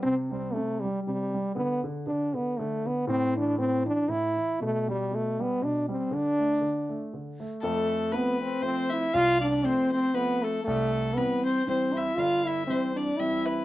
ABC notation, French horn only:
X:1
M:3/4
L:1/8
Q:"Swing" 1/4=119
K:Flyd
V:1 name="French horn"
C C A, G, G,2 | B, z D B, A, B, | C D C D E2 | A, G, A, B, D C |
D4 z2 | A,2 B, C C E | F D C C B, A, | A,2 B, C C E |
F E C D E2 |]